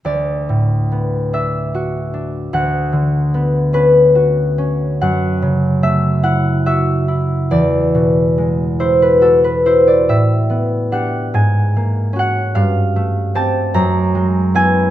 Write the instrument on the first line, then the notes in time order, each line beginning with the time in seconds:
harp
0.05 D2 D5
0.49 A2
0.92 B3
1.33 D4 E5
1.75 F#4
2.14 D4
2.53 D2 F#5
2.93 D3
3.34 B3
3.73 C#4 B4
4.15 F#4
4.58 C#4
5.01 F#2 F#5
5.42 C#3
5.83 A3 E5
6.23 E4 F#5
6.66 F#4 E5
7.08 E4
7.51 E2 D5
7.95 B2
8.38 G#3
8.80 E4 C5
9.02 B4
9.21 F#4 A4
9.44 B4
9.66 E4 C5
9.88 D5
10.09 A2 E5
10.50 B3
10.92 D4 G4 F#5
11.34 G#2 G#5
11.76 A#3
12.13 C#4 F#4
12.19 F#5
12.55 G2 F5
12.96 A3
13.35 C4 G4 A5
13.74 F#2 A#5
14.15 G#3
14.55 B3 E4 G#5